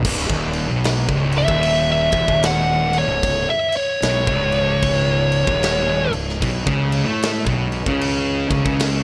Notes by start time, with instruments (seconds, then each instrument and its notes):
0.04 fingered electric bass C#1, distorted electric guitar C#2, kick, crash
0.28 fingered electric bass D#1, distorted electric guitar D#2, kick
0.53 crash
0.68 fingered electric bass B1, distorted electric guitar B2
0.84 snare, crash
1.08 fingered electric bass C#1, distorted electric guitar C#2, kick
1.32 crash
1.38 lead electric guitar E5
1.48 fingered electric bass D#1, distorted electric guitar D#2, kick
1.63 crash
1.92 lead electric guitar E5
2.12 fingered electric bass E1, distorted electric guitar E2, kick, crash
2.28 fingered electric bass D#1, distorted electric guitar D#2, kick
2.43 lead electric guitar F#5, snare, crash
2.93 crash
2.98 lead electric guitar C#5
3.07 fingered electric bass C#1, distorted electric guitar C#2
3.23 kick, crash
3.50 lead electric guitar E5
3.72 crash
3.77 lead electric guitar C#5
4.02 fingered electric bass B1, distorted electric guitar B2, snare, crash
4.26 fingered electric bass C#1, distorted electric guitar C#2, kick
4.52 crash
4.83 kick, crash
5.32 crash
5.46 fingered electric bass D#1, distorted electric guitar D#2, kick
5.63 snare, crash
6.11 fingered electric bass C#1, distorted electric guitar C#2, crash
6.29 snare
6.41 fingered electric bass B1, distorted electric guitar B2, kick, crash
6.66 fingered electric bass C#2, distorted electric guitar C#3, kick
6.92 crash
7.05 fingered electric bass A2, distorted electric guitar A3
7.22 snare, crash
7.45 fingered electric bass B1, distorted electric guitar B2, kick
7.72 crash
7.86 fingered electric bass C#2, distorted electric guitar C#3, kick
8.01 crash
8.50 fingered electric bass C#2, distorted electric guitar C#3, kick, crash
8.65 fingered electric bass C#2, distorted electric guitar C#3, kick
8.79 snare, crash